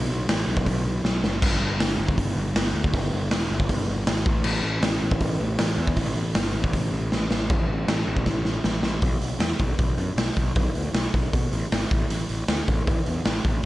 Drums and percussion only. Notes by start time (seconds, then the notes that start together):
0.29 snare, open hi-hat
0.57 kick
0.66 kick, open hi-hat
1.05 snare
1.24 snare
1.42 kick, splash, crash
1.80 snare, open hi-hat
2.09 kick
2.18 kick, open hi-hat
2.56 snare, open hi-hat
2.84 kick
2.93 kick, open hi-hat
3.31 snare, open hi-hat
3.60 kick
3.69 kick, open hi-hat
4.07 snare, open hi-hat
4.26 kick
4.44 crash
4.82 snare, open hi-hat
5.11 kick
5.20 kick, open hi-hat
5.58 snare, open hi-hat
5.87 kick
5.96 kick, open hi-hat
6.35 snare, open hi-hat
6.64 kick
6.73 kick, open hi-hat
7.12 snare
7.31 snare
7.50 kick, crash
7.88 snare, crash
8.17 kick
8.26 kick, snare
8.45 snare
8.64 snare
8.83 snare
9.02 kick, open hi-hat
9.21 open hi-hat
9.40 snare, open hi-hat
9.59 kick, open hi-hat
9.79 kick, open hi-hat
9.98 open hi-hat
10.18 snare, open hi-hat
10.36 kick, open hi-hat
10.55 kick, open hi-hat
10.75 open hi-hat
10.94 snare, open hi-hat
11.14 kick, open hi-hat
11.33 kick, open hi-hat
11.53 open hi-hat
11.72 snare, open hi-hat
11.91 kick, open hi-hat
12.10 open hi-hat
12.29 open hi-hat
12.48 snare, open hi-hat
12.68 kick, open hi-hat
12.87 kick, open hi-hat
13.06 open hi-hat
13.25 snare, open hi-hat
13.44 kick, open hi-hat